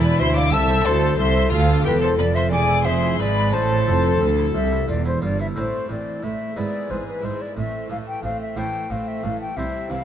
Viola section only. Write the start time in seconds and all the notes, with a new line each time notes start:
Already playing: E4
0.53 A4
1.52 A4
2.52 G#4
3.54 A4
5.56 A3
5.90 E3
6.23 A3
6.57 G#3
6.91 E3
7.24 G#3
7.57 A3
7.90 E3
8.24 A3
8.57 E3
8.90 A3
9.23 E3
9.57 G3
9.90 E3